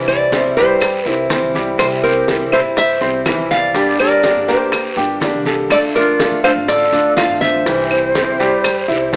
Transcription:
Already playing: upright bass C2, grand piano E3 E4
0.08 steel-string acoustic guitar G3 C4 E4, nylon-string guitar D5, high conga, claves, maracas
0.32 steel-string acoustic guitar C3 E3 G3 C4 E4, grand piano C4 C5, high bongo, high conga, short guiro, maracas
0.44 upright bass C3
0.56 grand piano G3 G4, steel-string acoustic guitar G3 C4 E4, nylon-string guitar C5, high bongo, high conga, short guiro, maracas
0.69 upright bass G2
0.81 muted steel-string acoustic guitar stroke, high bongo, high conga, long guiro, claves, maracas
1.05 upright bass C2, steel-string acoustic guitar G3 C4 E4, grand piano E4 E5, nylon-string guitar A#4, high bongo, high conga, maracas
1.29 steel-string acoustic guitar C3 E3 G3 C4 E4, grand piano C4 C5, high bongo, low bongo, high conga, short guiro, maracas
1.42 upright bass C2
1.55 grand piano G3 G4, high bongo, high conga, short guiro, maracas
1.77 upright bass C2, steel-string acoustic guitar C3 E3 G3 C4 E4, flute G4, nylon-string guitar C5, high bongo, high conga, long guiro, claves, maracas
2.03 steel-string acoustic guitar G3 C4 E4, grand piano C4 C5, flute G4, nylon-string guitar A#4, high conga, maracas
2.27 steel-string acoustic guitar C3 E3 G3 C4 E4, high bongo, high conga, short guiro, maracas
2.40 upright bass C3
2.52 steel-string acoustic guitar G3 C4 E4, grand piano E4 E5, flute A4, nylon-string guitar C5, high conga, short guiro, claves, maracas
2.64 upright bass G2
2.77 flute C5, nylon-string guitar E5, muted steel-string acoustic guitar stroke, high bongo, high conga, long guiro, maracas
3.01 upright bass C2, steel-string acoustic guitar G3 C4 E4, grand piano C4 C5, high conga, maracas
3.26 steel-string acoustic guitar C3 E3 G3 C4 E4, grand piano E3 E4, high bongo, low bongo, high conga, short guiro, claves, maracas
3.38 upright bass C2
3.51 flute D5, nylon-string guitar F5, high conga, short guiro, maracas
3.74 upright bass G1, steel-string acoustic guitar D3 G3 A#3 D4 G4, grand piano G3 G4, high bongo, high conga, long guiro, maracas
3.99 steel-string acoustic guitar A#3 D4 G4, flute A#4, nylon-string guitar D5, high conga, claves, maracas
4.23 steel-string acoustic guitar D3 G3 A#3 D4 G4, grand piano D4 D5, high bongo, high conga, short guiro, maracas
4.35 upright bass G2
4.48 grand piano A#3 A#4, steel-string acoustic guitar A#3 D4 G4, flute G4, nylon-string guitar C5, high bongo, high conga, short guiro, maracas
4.59 upright bass D2
4.72 muted steel-string acoustic guitar stroke, high bongo, high conga, long guiro, claves, maracas
4.96 upright bass G1, steel-string acoustic guitar A#3 D4 G4, flute F4, grand piano G4 G5, nylon-string guitar A#4, high bongo, high conga, maracas
5.20 steel-string acoustic guitar D3 G3 A#3 D4 G4, grand piano D4 D5, high bongo, low bongo, high conga, short guiro, maracas
5.33 upright bass C2
5.45 grand piano A4, high bongo, high conga, short guiro, maracas
5.70 upright bass D2, steel-string acoustic guitar D3 A3 D4 F4, flute A4, nylon-string guitar D5, high bongo, high conga, long guiro, claves, maracas
5.95 steel-string acoustic guitar A3 D4 F4, grand piano D4 D5, flute F4, nylon-string guitar A#4, high conga, maracas
6.19 steel-string acoustic guitar D3 A3 D4 F4, high bongo, high conga, short guiro, maracas
6.31 upright bass D3
6.43 steel-string acoustic guitar A3 D4 F4, grand piano F4 F5, flute A4, nylon-string guitar C5, high conga, short guiro, claves, maracas
6.56 upright bass A1
6.68 flute A4, nylon-string guitar D5, muted steel-string acoustic guitar stroke, high bongo, high conga, long guiro, maracas
6.92 upright bass D2, steel-string acoustic guitar A3 D4 F4, grand piano D4 D5, high conga, maracas
7.17 steel-string acoustic guitar D3 A3 D4 F4, grand piano F3 F4, flute D5, nylon-string guitar F5, high bongo, low bongo, high conga, short guiro, claves, maracas
7.29 upright bass G2
7.41 flute C5, nylon-string guitar E5, high conga, short guiro, maracas
7.66 upright bass C2, steel-string acoustic guitar C3 E3 G3 C4 E4, grand piano E3 E4, high bongo, high conga, long guiro, maracas
7.91 steel-string acoustic guitar G3 C4 E4, high conga, claves, maracas
8.15 steel-string acoustic guitar C3 E3 G3 C4 E4, grand piano C4 C5, high bongo, high conga, short guiro, maracas
8.27 upright bass C3
8.39 grand piano G3 G4, steel-string acoustic guitar G3 C4 E4, high bongo, high conga, short guiro, maracas
8.51 upright bass G2
8.64 muted steel-string acoustic guitar stroke, high bongo, high conga, long guiro, claves, maracas
8.88 upright bass C2, steel-string acoustic guitar G3 C4 E4, grand piano E4 E5, high bongo, high conga, maracas
9.13 steel-string acoustic guitar C3, grand piano C4 C5, high conga

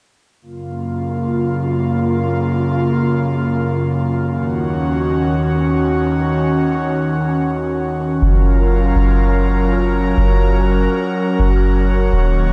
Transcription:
0.42 analog synth pad F#2 C#3 A#3 F4
4.32 analog synth pad D#2 D#3 C#4 F#4
8.22 808-style bass F#1, analog synth pad F#3 C#4 F4 A#4
8.95 808-style bass F#1
10.17 808-style bass F#1, analog synth pad F#4
11.39 808-style bass F#1
12.12 808-style bass D#1, analog synth pad D#3 A#3 C#5
12.49 808-style bass F#1

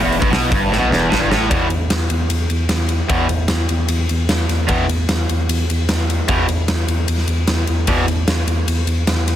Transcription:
0.01 tine electric piano E1, overdriven electric guitar E2
0.12 open hi-hat
0.20 tine electric piano G1, overdriven electric guitar G2, kick
0.30 tine electric piano B1, overdriven electric guitar B2, snare, open hi-hat
0.50 tine electric piano G1, overdriven electric guitar G2, kick, open hi-hat
0.69 tine electric piano A1, overdriven electric guitar A2, snare
0.79 tine electric piano B1, overdriven electric guitar B2
0.89 tine electric piano E1, overdriven electric guitar E2, snare
1.10 tine electric piano A1, overdriven electric guitar A2, snare
1.19 tine electric piano G1, overdriven electric guitar G2
1.29 tine electric piano A1, overdriven electric guitar A2, snare
1.49 overdriven electric guitar E2 B2 E3, tine electric piano E2, kick, ride
1.70 tine electric piano E2, ride
1.90 tine electric piano E2, snare, ride
2.10 tine electric piano E2, ride
2.29 tine electric piano E2, ride
2.49 tine electric piano E2, ride
2.69 tine electric piano E2, snare, ride
2.89 ride
3.09 overdriven electric guitar E2 B2 E3, tine electric piano E2, kick, ride
3.29 tine electric piano E2, ride
3.48 tine electric piano E2, snare, ride
3.69 tine electric piano E2, ride
3.88 tine electric piano E2, ride
4.09 tine electric piano E2, ride
4.29 tine electric piano E2, snare, ride
4.49 tine electric piano E2, snare, ride
4.68 overdriven electric guitar E2 B2 E3, tine electric piano E2, kick, ride
4.88 tine electric piano E2, ride
5.09 tine electric piano E2, snare, ride
5.29 tine electric piano E2, ride
5.48 tine electric piano E2, ride
5.70 tine electric piano E2, ride
5.89 tine electric piano E2, snare, ride
6.10 ride
6.28 overdriven electric guitar E2 B2 E3, tine electric piano E2, kick, ride
6.48 tine electric piano E2, ride
6.68 tine electric piano E2, snare, ride
6.88 tine electric piano E2, ride
7.08 tine electric piano E2, ride
7.18 snare
7.28 tine electric piano E2, ride
7.48 tine electric piano E2, snare, ride
7.67 tine electric piano E2, ride
7.87 overdriven electric guitar E2 B2 E3, tine electric piano E2, kick, ride
8.07 tine electric piano E2, ride
8.27 tine electric piano E2, snare, ride
8.47 tine electric piano E2, ride
8.67 tine electric piano E2, ride
8.87 tine electric piano E2, ride
9.06 tine electric piano E2, snare, ride
9.28 snare, ride

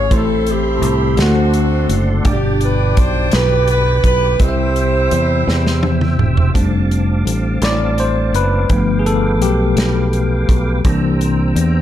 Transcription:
Already playing: saxophone section C#5
0.11 fingered electric bass A1, tine electric piano A2 A3 C4 E4 C5, saxophone section C4 A4, tonewheel organ A4 C5 E5 C6, kick, closed hi-hat
0.15 saxophone section E4
0.47 saxophone section C4, closed hi-hat
0.51 saxophone section E4 G4
0.82 fingered electric bass C2, closed hi-hat
1.17 fingered electric bass D2, tine electric piano D3 A3 D4 F#4 C5, tonewheel organ D5 F#5, snare, closed hi-hat
1.22 saxophone section A3 C4 F#4
1.54 closed hi-hat
1.89 fingered electric bass F#1, closed hi-hat
2.23 fingered electric bass G1, tine electric piano G2 A3 D4 G4 D5, tonewheel organ G4 G5 D6, kick, closed hi-hat
2.29 tine electric piano B2, saxophone section D4 G4
2.61 saxophone section B4, closed hi-hat
2.97 fingered electric bass B1, saxophone section C5, kick, closed hi-hat
3.32 fingered electric bass B1, saxophone section B4, snare, closed hi-hat
3.68 saxophone section B4, closed hi-hat
4.04 fingered electric bass B1, saxophone section B4, kick, closed hi-hat
4.39 fingered electric bass C2, tine electric piano C3 C4 E4 G4 D#5, tonewheel organ C5 E5 E6, kick, closed hi-hat
4.43 saxophone section E4 G4 C5
4.49 tine electric piano E5
4.76 closed hi-hat
5.11 fingered electric bass E2, closed hi-hat
5.47 fingered electric bass E2, snare
5.67 snare
5.83 high tom
6.01 mid tom
6.19 fingered electric bass E1, mid tom
6.37 floor tom
6.54 fingered electric bass F1, tine electric piano G3 A3 D4, tonewheel organ C4 F5 A5 D6, kick, closed hi-hat
6.91 closed hi-hat
7.25 fingered electric bass A1, closed hi-hat
7.62 fingered electric bass A1, tine electric piano D5, snare, closed hi-hat
7.98 tine electric piano C5, closed hi-hat
8.33 fingered electric bass F#1, tine electric piano B4, closed hi-hat
8.68 fingered electric bass G1, tine electric piano F3 A3 B3, tonewheel organ B4 G5, kick, closed hi-hat
8.99 tine electric piano G#4
9.06 tine electric piano A4, closed hi-hat
9.40 fingered electric bass B1, tine electric piano G4, closed hi-hat
9.76 fingered electric bass B1, snare, closed hi-hat
10.13 closed hi-hat
10.49 fingered electric bass B1, kick, closed hi-hat
10.84 fingered electric bass C2, tine electric piano E3 A#3 D4, tonewheel organ C5 A#5 E6, kick, closed hi-hat
11.21 closed hi-hat
11.56 fingered electric bass E2, closed hi-hat

